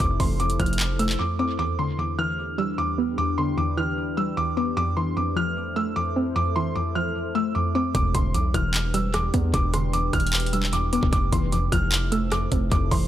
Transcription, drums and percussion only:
0.00 kick loud
0.00 closed hi-hat medium
0.20 kick medium
0.20 open hi-hat loud
0.40 closed hi-hat soft
0.50 closed hi-hat medium
0.60 kick loud
0.60 closed hi-hat medium
0.66 closed hi-hat medium
0.73 closed hi-hat medium
0.80 clap loud
0.80 closed hi-hat medium
0.99 closed hi-hat medium
1.09 clap medium
7.95 kick loud
7.95 closed hi-hat medium
8.15 kick loud
8.15 closed hi-hat medium
8.34 closed hi-hat medium
8.54 kick loud
8.54 closed hi-hat medium
8.74 clap loud
8.74 closed hi-hat medium
8.94 closed hi-hat medium
9.14 cross-stick loud
9.14 closed hi-hat medium
9.34 kick medium
9.34 closed hi-hat medium
9.54 kick loud
9.54 closed hi-hat medium
9.74 cross-stick medium
9.74 closed hi-hat loud
9.93 closed hi-hat medium
10.13 kick medium
10.13 closed hi-hat medium
10.20 closed hi-hat medium
10.27 closed hi-hat medium
10.33 clap loud
10.33 closed hi-hat medium
10.40 closed hi-hat medium
10.46 closed hi-hat medium
10.53 closed hi-hat medium
10.63 clap medium
10.73 closed hi-hat medium
10.93 closed hi-hat medium
11.03 kick loud
11.13 kick loud
11.13 closed hi-hat medium
11.32 kick loud
11.32 closed hi-hat medium
11.52 closed hi-hat medium
11.72 kick medium
11.72 closed hi-hat medium
11.92 clap loud
11.92 closed hi-hat medium
12.12 closed hi-hat medium
12.32 cross-stick loud
12.32 closed hi-hat medium
12.52 kick medium
12.52 closed hi-hat medium
12.72 kick loud
12.72 closed hi-hat medium
12.91 kick loud
12.91 open hi-hat loud

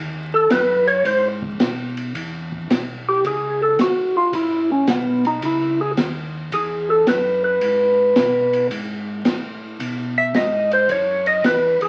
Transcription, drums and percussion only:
0.50 kick soft
0.50 snare medium
0.50 hi-hat pedal medium
0.50 ride medium
0.87 ride soft
1.05 kick soft
1.05 ride medium
1.42 kick medium
1.60 kick soft
1.60 snare medium
1.60 hi-hat pedal medium
1.60 ride medium
1.97 ride soft
2.15 kick soft
2.15 ride medium
2.52 kick soft
2.70 kick soft
2.70 snare medium
2.70 hi-hat pedal medium
2.70 ride medium
3.24 kick soft
3.24 ride medium
3.79 kick soft
3.79 snare medium
3.79 hi-hat pedal soft
3.79 ride medium
4.33 kick soft
4.33 ride medium
4.87 kick soft
4.87 snare medium
4.87 hi-hat pedal medium
4.87 ride medium
5.25 ride soft
5.42 kick soft
5.42 ride medium
5.97 kick soft
5.97 snare medium
5.97 hi-hat pedal medium
5.97 ride medium
6.52 kick soft
6.52 ride medium
7.07 kick soft
7.07 snare medium
7.07 hi-hat pedal medium
7.07 ride medium
7.61 kick soft
7.61 ride medium
8.16 kick soft
8.16 snare medium
8.16 hi-hat pedal medium
8.16 ride medium
8.53 ride soft
8.71 kick soft
8.71 ride medium
9.25 kick soft
9.25 snare medium
9.25 hi-hat pedal medium
9.25 ride medium
9.80 kick soft
9.80 ride medium
10.34 kick soft
10.34 snare medium
10.34 hi-hat pedal medium
10.34 ride medium
10.71 ride soft
10.89 kick soft
10.89 ride medium
11.26 ride soft
11.44 kick soft
11.44 snare medium
11.44 hi-hat pedal medium
11.44 ride medium
11.81 ride soft

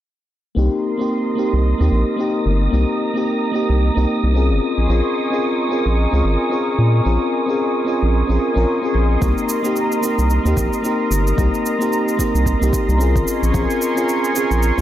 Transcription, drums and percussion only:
9.22 kick loud
9.22 shaker soft
9.38 shaker soft
9.49 shaker medium
9.65 shaker soft
9.76 shaker soft
9.92 shaker soft
10.03 shaker medium
10.19 shaker soft
10.30 shaker soft
10.46 shaker soft
10.57 kick medium
10.57 shaker medium
10.73 shaker soft
10.85 shaker soft
11.12 shaker medium
11.27 shaker soft
11.38 kick loud
11.38 shaker soft
11.54 shaker soft
11.66 shaker medium
11.81 shaker soft
11.93 shaker soft
12.08 shaker soft
12.19 kick medium
12.19 shaker medium
12.35 shaker soft
12.46 kick medium
12.46 shaker soft
12.62 shaker soft
12.73 kick medium
12.73 shaker medium
12.89 shaker soft
13.01 shaker soft
13.16 kick medium
13.16 shaker soft
13.28 shaker medium
13.43 shaker soft
13.54 kick loud
13.54 shaker soft
13.70 shaker soft
13.82 shaker medium
13.97 shaker soft
14.09 shaker soft
14.24 shaker soft
14.36 shaker medium
14.51 shaker soft
14.63 shaker soft

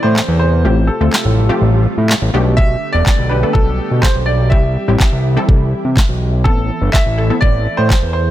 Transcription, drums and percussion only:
0.17 snare medium
0.17 clap loud
1.13 snare medium
1.13 clap loud
2.10 snare medium
2.10 clap loud
2.58 kick loud
3.07 kick loud
3.07 snare medium
3.07 clap loud
3.55 kick loud
4.03 kick loud
4.03 snare medium
4.03 clap loud
4.52 kick loud
5.00 kick loud
5.00 snare medium
5.00 clap loud
5.49 kick loud
5.97 kick loud
5.97 snare medium
5.97 clap loud
6.46 kick loud
6.94 kick loud
6.94 snare medium
6.94 clap loud
7.42 kick loud
7.91 kick loud
7.91 snare medium
7.91 clap loud

